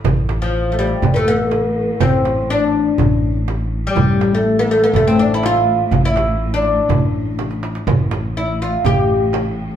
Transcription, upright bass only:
\new Staff \with { instrumentName = "Upright bass" } { \clef bass \time 4/4 \tempo 4 = 123 a,,2 a,,2 | a,,2 a,,2 | a,,2 a,,2 | a,,2 a,,2 |
a,,2 a,,2 | }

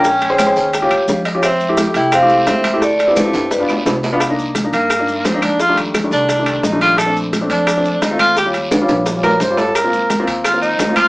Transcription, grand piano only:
\new Staff \with { instrumentName = "Grand piano" } { \time 4/4 \key c \minor \tempo 4 = 173 << { r2. f''8 ees''8 | r1 | r1 | r1 |
r1 | r1 | r1 | r1 | } \\ { r8. <des' aes' c''>16 r16 <des' aes' c''>8. r16 <des' f' g'>4 r8 <des' f' g'>16 | r8. <a e' g'>16 r16 <a e' g'>8. r16 <a e' g'>4 r8 <a e' g'>16 | r8. <c' e' f' g'>16 r16 <c' e' f' g'>8. r16 <b d' f'>4 r8 <b d' f'>16 | r16 <bes d' ees'>8. r16 <bes d' ees'>8. r16 <bes d' ees'>8. r16 <bes d' ees'>8. |
r16 <ees g a d'>8. r16 <ees g a d'>8. r16 <ees g a d'>8. r16 <ees g a d'>8. | r16 <a c' d'>8. r16 <a c' d'>8. r16 <a c' d'>8. r16 <a c' f'>8. | r16 <g des' f'>8. r16 <g des' f'>8. r16 <g des' f'>8. r16 <g des' f'>8. | r16 <bes c' f'>8. r16 <bes c' f'>8. r16 <bes c' f'>8. r16 <bes c' f'>8. | } >> }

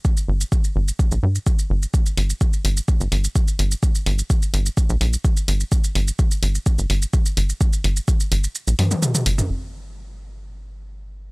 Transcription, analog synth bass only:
\new Staff \with { instrumentName = "Analog synth bass" } { \clef bass \time 4/4 \key g \minor \tempo 4 = 127 r8 g,,16 r8. g,,16 r8 bes,,16 g,16 r8. g,,16 r16 | r8 g,,16 r8. g,,16 r8 g,,16 g,,16 r8. g,,16 r16 | r8 g,,16 r8. g,,16 r8 bes,,16 bes,,16 r8. g,,16 r16 | r8 g,,16 r8. g,,16 r8 g,,16 g,,16 r8. g,,16 r16 |
r8 g,,16 r8. g,,16 r8 bes,,16 g,16 r8. g,,16 r16 | g,,1 | }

